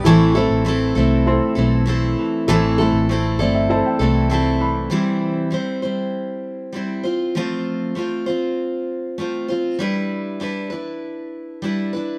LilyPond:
<<
  \new Staff \with { instrumentName = "Felt piano" } { \time 4/4 \key c \major \tempo 4 = 98 << { r1 | r4. d''16 e''16 e''16 g''16 a''8 a''8 b''8 | r1 | r1 |
r1 | } \\ { <e' a' c'' a''>8 <e' a' c'' a''>4 r8 <e' a' c'' c'''>4. r8 | <e' a' c'' a''>8 <e' a' c'' a''>4 r8 <e' a' c'' a''>4. r8 | r1 | r1 |
r1 | } >> }
  \new Staff \with { instrumentName = "Steel-string acoustic guitar" } { \time 4/4 \key c \major <a, e a c' e' a'>8 <a c' e' a'>8 <a c' e' a'>8 <a c' e' a'>4 <a c' e' a'>8 <a c' e' a'>4 | <a, e a c' e' a'>8 <a c' e' a'>8 <a c' e' a'>8 <a c' e' a'>4 <a c' e' a'>8 <a c' e' a'>4 | <c e g c' e' c''>4 <g c' e' c''>8 <g c' e' c''>4. <g c' e' c''>8 <c' f' c''>8 | <f a c' f' c''>4 <a c' f' c''>8 <c' f' c''>4. <a c' f' c''>8 <c' f' c''>8 |
<g d' e' b'>4 <g d' e' b'>8 <d' e' b'>4. <g d' e' b'>8 <d' e' b'>8 | }
  \new Staff \with { instrumentName = "Clean electric guitar" } { \clef bass \time 4/4 \key c \major e8 e8 c'8 e'8 c'8 e8 c'8 e8 | e8 e8 c'8 e'8 c'8 e8 c'8 e8 | r1 | r1 |
r1 | }
  \new Staff \with { instrumentName = "Fingered electric bass" } { \clef bass \time 4/4 \key c \major a,,8. a,,8. c,8. r16 b,,4 r8 | a,,8. a,,8. g,,8. r16 c,4. | r1 | r1 |
r1 | }
>>